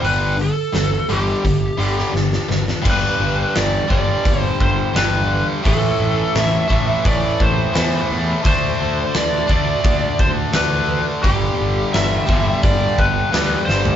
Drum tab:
CC |----------------|x---------------|----------------|----------------|
HH |o-o-o-o-o-o-----|----o---o---o---|o---o---o---o---|o---o---o---o---|
SD |----o------ooooo|----o-------o---|----o-------o---|----o-------o---|
FT |----------------|----------------|----------------|----------------|
BD |--------o-------|o-----o-o-o-----|o-----o-o-o-----|o-----o-o-o-----|

CC |----------------|
HH |o---o---o---o---|
SD |----o-------o-o-|
FT |---------------o|
BD |o-----o-o-o-----|